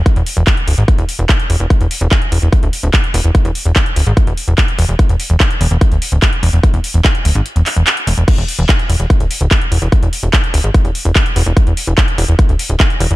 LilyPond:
<<
  \new Staff \with { instrumentName = "Analog synth bass" } { \clef bass \time 4/4 \tempo 4 = 146 r16 e,,16 r16 e,,16 r8 d,,16 gis,,16 r16 e,,16 r16 e,,16 r8 e,,16 e,,16 | r16 e,,16 r16 e,,16 r8 e,,16 e,,16 r16 d,,16 r16 d,,16 r8 e,,16 e,,16 | r16 e,,16 r16 e,,16 r8 d,,16 gis,,16 r16 e,,16 r16 e,,16 r8 e,,16 e,,16 | r16 e,,16 r16 e,,16 r8 e,,16 e,,16 r16 d,,16 r16 d,,16 r8 e,,16 e,,16 |
r16 e,,16 r16 e,,16 r8 d,,16 gis,,16 r16 e,,16 r16 e,,16 r8 e,,16 e,,16 | r16 e,,16 r16 e,,16 r8 e,,16 e,,16 r16 d,,16 r16 d,,16 r8 e,,16 e,,16 | r16 e,,16 r16 e,,16 r8 d,,16 gis,,16 r16 e,,16 r16 e,,16 r8 e,,16 e,,16 | r16 e,,16 r16 e,,16 r8 e,,16 e,,16 r16 d,,16 r16 d,,16 r8 e,,16 e,,16 | }
  \new DrumStaff \with { instrumentName = "Drums" } \drummode { \time 4/4 <hh bd>16 hh16 hho16 hh16 <hc hh bd>16 hh16 hho16 hh16 <hh bd>16 hh16 hho16 hh16 <hc hh bd>16 hh16 hho16 hh16 | <hh bd>16 hh16 hho16 hh16 <hc hh bd>16 hh16 hho16 hh16 <hh bd>16 hh16 hho16 hh16 <hc hh bd>16 hh16 hho16 hh16 | <hh bd>16 hh16 hho16 hh16 <hc hh bd>16 hh16 hho8 <hh bd>16 hh16 hho16 hh16 <hc hh bd>16 hh16 hho16 hh16 | <hh bd>16 hh16 hho16 hh16 <hc hh bd>16 hh16 hho16 hh16 <hh bd>16 hh16 hho16 hh16 <hc hh bd>16 hh16 hho16 hh16 |
<hh bd>16 hh16 hho16 hh16 <hc hh bd>16 hh16 hho16 hh16 hh16 hh16 <hc hho>16 hh16 <hc hh>16 hh16 hho16 hh16 | <cymc hh bd>16 hh16 hho16 hh16 <hc hh bd>16 hh16 hho16 hh16 <hh bd>16 hh16 hho8 <hc hh bd>16 hh16 hho16 hh16 | <hh bd>16 hh16 hho16 hh16 <hc hh bd>16 hh16 hho16 hh16 <hh bd>16 hh16 hho16 hh16 <hc hh bd>16 hh16 hho16 hh16 | <hh bd>16 hh16 hho16 hh16 <hc hh bd>16 hh16 hho8 <hh bd>16 hh16 hho16 hh16 <hc hh bd>16 hh16 hho16 hh16 | }
>>